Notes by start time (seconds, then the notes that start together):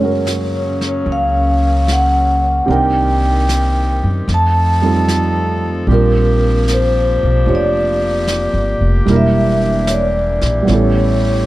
Already playing: F#2 C#3 F#3 A#3 C#4 C#5
0.00 G#3 C#4 F#4
0.05 A#4
0.27 snare, hi-hat pedal
0.81 snare
1.06 C#2, brush sweep
1.12 F5
1.88 snare, hi-hat pedal
1.92 F#5
2.66 C2 D#3 C4 D4 G4, brush sweep
2.70 D#4 A#4 G5
3.49 snare, hi-hat pedal
4.03 F#2
4.28 F2 F3 A3 D#4 A4, brush sweep, snare
4.34 A5
4.82 G3 C4 D#4 F4 A4
5.08 snare, hi-hat pedal
5.87 A#1 F3 G3 A#3 C4 D4 G4, brush sweep
5.91 F4 A#4
6.68 snare, hi-hat pedal
6.73 C5
7.23 B1
7.46 F1 D4 F4 G4 C5 C#5, brush sweep
7.55 D5
8.28 snare, hi-hat pedal
8.54 G1
8.81 F1
9.05 E1 E3 G3 A#3 D4, brush sweep, snare
9.10 E4 A#4
9.16 E5
9.87 C#5, snare, hi-hat pedal
9.93 D5
10.41 A#1, snare
10.63 G3 B3 C#4 G4
10.67 A1 A3 C#4, brush sweep, snare
10.71 E4 A4 C#5